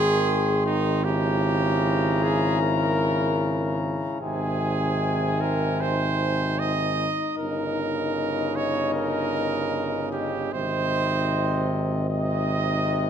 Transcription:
Already playing: tuba G#1, trombone D#3, trumpet G#4, french horn G#4, cornet C6
0.66 trumpet D#4
1.04 trombone C#3, french horn E4, trumpet G4, cornet A#5
2.23 trumpet G#4
2.62 trumpet A#4
4.21 tuba G#1, trombone C3, french horn D#4, trumpet G#4, cornet G#5
5.41 trumpet A#4
5.81 trumpet C5
6.59 trumpet D#5
7.37 tuba G1, trombone C#3, trumpet A#4, cornet D#5
8.56 trumpet C#5
8.94 trumpet A#4
10.13 trumpet G4
10.52 tuba G#1, trombone C3, french horn D#4, trumpet C5, cornet D#5
12.09 trombone C3, french horn D#4, cornet D#5, trumpet D#5

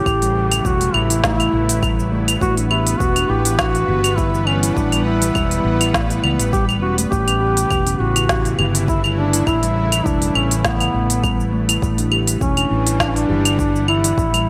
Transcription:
Already playing: synth drone C#3 A3 B3 E4 B4, duduk G4
0.06 fretless electric bass A1, kick, claves, shaker
0.22 steel tongue drum G3, open hi-hat, shaker
0.51 steel tongue drum E3, open hi-hat, claves, shaker
0.65 fretless electric bass E1, steel tongue drum G3, duduk F#4, kick, shaker
0.81 open hi-hat, shaker
0.94 fretless electric bass A1, duduk E4, claves
1.10 steel tongue drum E4, open hi-hat, shaker
1.24 steel tongue drum A3, duduk E4, kick, snare, shaker
1.40 open hi-hat, claves, shaker
1.53 fretless electric bass A1
1.69 open hi-hat, shaker
1.82 steel tongue drum G3, kick, claves, shaker
1.99 shaker
2.12 steel tongue drum A3
2.28 steel tongue drum E4, open hi-hat, claves, shaker
2.41 fretless electric bass A1, synth drone E3, steel tongue drum A3, duduk F#4, kick, shaker
2.57 steel tongue drum D4, open hi-hat, shaker
2.71 duduk E4, steel tongue drum G4, claves
2.87 open hi-hat, shaker
2.99 fretless electric bass E1, duduk F#4, kick, shaker
3.06 synth drone G3
3.16 steel tongue drum D4, open hi-hat, claves, shaker
3.29 fretless electric bass A1, steel tongue drum E4, duduk G4
3.45 steel tongue drum E4, open hi-hat, shaker
3.59 steel tongue drum D4, duduk F#4, kick, snare, claves, shaker
3.63 synth drone F#5
3.75 open hi-hat, shaker
3.88 fretless electric bass G1, steel tongue drum G4
4.04 open hi-hat, claves, shaker
4.17 duduk E4, kick, shaker
4.35 shaker
4.46 duduk C#4, steel tongue drum E4, claves
4.63 steel tongue drum E4, open hi-hat, shaker
4.76 fretless electric bass A1, duduk D4, kick, shaker
4.92 steel tongue drum G3, open hi-hat, claves, shaker
5.05 duduk E4
5.22 steel tongue drum E3, open hi-hat, shaker
5.35 fretless electric bass E1, steel tongue drum G3, kick, claves, shaker
5.51 open hi-hat, shaker
5.65 fretless electric bass A1
5.81 steel tongue drum E4, open hi-hat, claves, shaker
5.94 steel tongue drum A3, kick, snare, shaker
6.10 open hi-hat, shaker
6.24 fretless electric bass C#2, claves
6.39 fretless electric bass A1, open hi-hat, shaker
6.53 steel tongue drum G3, duduk G4, kick, shaker
6.69 claves, shaker
6.82 fretless electric bass E1, steel tongue drum C#4, duduk F#4
6.98 steel tongue drum A3, open hi-hat, shaker
7.11 fretless electric bass A1, synth drone C#3, steel tongue drum A3, duduk G4, kick, shaker
7.27 steel tongue drum C#4, open hi-hat, claves, shaker
7.41 steel tongue drum G4
7.57 open hi-hat, shaker
7.71 fretless electric bass E1, synth drone E4, kick, claves, shaker
7.75 synth drone A3
7.86 steel tongue drum C#4, open hi-hat, shaker
7.99 fretless electric bass A1, steel tongue drum E4, duduk F#4
8.16 steel tongue drum E4, open hi-hat, claves, shaker
8.29 steel tongue drum C#4, kick, snare, shaker
8.45 open hi-hat, shaker
8.59 fretless electric bass G1, steel tongue drum G4, claves
8.75 open hi-hat, shaker
8.88 duduk E4, kick, shaker
9.04 claves, shaker
9.17 duduk D4, steel tongue drum E4
9.33 steel tongue drum E4, open hi-hat, shaker
9.47 fretless electric bass A1, duduk E4, kick, claves, shaker
9.63 steel tongue drum G3, open hi-hat, shaker
9.92 steel tongue drum E3, open hi-hat, claves, shaker
10.06 fretless electric bass E1, steel tongue drum G3, duduk D4, kick, shaker
10.22 open hi-hat, shaker
10.35 fretless electric bass A1, duduk C#4, claves
10.51 steel tongue drum E4, open hi-hat, shaker
10.58 duduk C#4
10.64 steel tongue drum A3, duduk B3, kick, snare, shaker
10.80 open hi-hat, claves, shaker
10.94 fretless electric bass A1
11.10 open hi-hat, shaker
11.23 steel tongue drum G3, kick, claves, shaker
11.40 shaker
11.53 steel tongue drum A3
11.69 steel tongue drum E4, open hi-hat, claves, shaker
11.82 fretless electric bass A1, synth drone E3, steel tongue drum A3, kick, shaker
11.98 steel tongue drum D4, open hi-hat, shaker
12.11 steel tongue drum G4, claves
12.18 synth drone G3
12.27 open hi-hat, shaker
12.41 fretless electric bass E1, duduk C#4, kick, shaker
12.57 steel tongue drum D4, open hi-hat, claves, shaker
12.70 fretless electric bass A1, steel tongue drum E4
12.86 steel tongue drum E4, synth drone F#5, open hi-hat, shaker
13.00 steel tongue drum D4, duduk D4, kick, snare, claves, shaker
13.08 duduk C#4
13.16 duduk D4, open hi-hat, shaker
13.29 fretless electric bass G1, steel tongue drum G4
13.45 open hi-hat, claves, shaker
13.59 duduk D4, kick, shaker
13.76 shaker
13.88 steel tongue drum E4, duduk E4, claves
14.04 steel tongue drum E4, open hi-hat, shaker
14.18 fretless electric bass A1, kick, shaker
14.33 steel tongue drum G3, open hi-hat, claves, shaker

